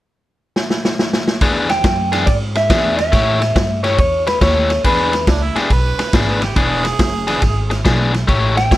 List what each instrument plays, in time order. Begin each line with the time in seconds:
0.56 snare
0.70 snare
0.85 snare
0.99 snare
1.13 snare
1.28 snare
1.41 upright bass E2, overdriven electric guitar E3 B3 D4 G#4, kick, ride
1.69 clean electric guitar G5, muted overdriven electric guitar stroke, snare, ride
1.84 upright bass F#2, muted overdriven electric guitar stroke, kick, snare, ride
2.12 overdriven electric guitar E3 B3 D4 G#4, snare, ride
2.26 upright bass G#2, clean electric guitar D5, muted overdriven electric guitar stroke, kick, ride
2.55 clean electric guitar E5, muted overdriven electric guitar stroke, snare, ride
2.70 upright bass E2, overdriven electric guitar E3 B3 D4 G#4, kick, snare, ride
2.97 clean electric guitar E5, muted overdriven electric guitar stroke, snare, ride
3.12 upright bass A2, overdriven electric guitar A3 E4 G4 C#5, kick, snare, ride
3.41 muted overdriven electric guitar stroke, snare, ride
3.56 upright bass G2, muted overdriven electric guitar stroke, kick, snare, ride
3.83 overdriven electric guitar A3 E4 G4 C#5, clean electric guitar C#5, snare, ride
3.98 upright bass E2, clean electric guitar C#5, muted overdriven electric guitar stroke, kick, ride
4.27 clean electric guitar B4, muted overdriven electric guitar stroke, snare, ride
4.41 upright bass D#2, overdriven electric guitar A3 E4 G4 C#5, clean electric guitar C#5, kick, snare, ride
4.70 muted overdriven electric guitar stroke, snare, ride
4.84 upright bass E2, overdriven electric guitar E3 B3 D4 G#4, clean electric guitar B4, kick, ride
5.13 muted overdriven electric guitar stroke, snare, ride
5.27 upright bass C#2, harmonica D4, muted overdriven electric guitar stroke, kick, snare, ride
5.43 harmonica E4
5.56 overdriven electric guitar E3 B3 D4 G#4, harmonica G4, muted upright bass stroke, snare, ride
5.70 upright bass B1, harmonica B4, muted overdriven electric guitar stroke, kick, ride
5.98 muted upright bass stroke, muted overdriven electric guitar stroke, snare, ride
6.13 upright bass G#1, overdriven electric guitar E3 B3 D4 G#4, kick, snare, ride
6.29 harmonica B4
6.42 harmonica G4, muted overdriven electric guitar stroke, snare, ride
6.56 upright bass E1, overdriven electric guitar E3 B3 D4 G#4, harmonica G#4, kick, ride
6.85 muted overdriven electric guitar stroke, snare, ride
6.99 upright bass F#1, muted overdriven electric guitar stroke, kick, snare, ride
7.27 overdriven electric guitar E3 B3 D4 G#4, snare, ride
7.42 upright bass G#1, muted overdriven electric guitar stroke, kick, snare, ride
7.70 muted overdriven electric guitar stroke, snare, ride
7.85 upright bass B1, overdriven electric guitar E3 B3 D4 G#4, kick, snare, ride
8.14 muted overdriven electric guitar stroke, snare, ride
8.27 upright bass A1, overdriven electric guitar A3 E4 G4 C#5, kick, ride
8.57 clean electric guitar G5, muted overdriven electric guitar stroke, snare, ride
8.71 upright bass E2, muted overdriven electric guitar stroke, kick, snare, ride